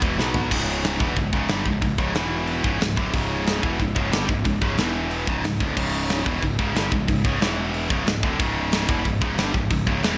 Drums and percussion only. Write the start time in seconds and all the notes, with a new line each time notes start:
0.02 kick, ride
0.19 snare
0.34 floor tom
0.51 kick, crash, china
0.84 snare, china
1.00 kick
1.16 kick, china
1.33 kick
1.48 snare, china
1.66 kick
1.82 kick, china
1.98 kick
2.15 snare, china
2.47 china
2.64 kick
2.81 snare, china
2.97 kick
3.13 kick, china
3.46 snare, china
3.63 kick
3.80 kick, china
3.96 kick
4.12 snare, china
4.29 kick
4.45 kick, china
4.62 kick
4.78 snare, china
5.11 china
5.27 kick
5.44 snare, china
5.60 kick
5.77 kick, china, crash
6.09 snare, china
6.26 kick
6.43 kick, china
6.59 kick
6.75 snare, china
6.92 kick
7.08 kick, china
7.25 kick
7.41 snare, china
7.74 china
7.90 kick
8.07 snare, china
8.23 kick
8.40 kick, china
8.72 snare, china
8.89 kick
9.05 kick, china
9.22 kick
9.38 snare, china
9.54 kick
9.71 kick, china
9.87 kick
10.03 snare, china